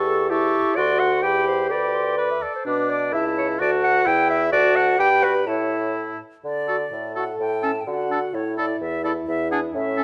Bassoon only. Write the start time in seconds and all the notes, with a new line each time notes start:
Already playing: E2
0.77 D2
1.23 E2
1.70 D2
2.66 B2
3.13 C#2
3.60 D2
4.06 E2
4.52 D2
4.99 G2
5.47 A2
6.44 D3
6.92 A2
7.39 A2
7.87 D3
8.34 A2
8.81 E2
9.28 E2
9.74 A2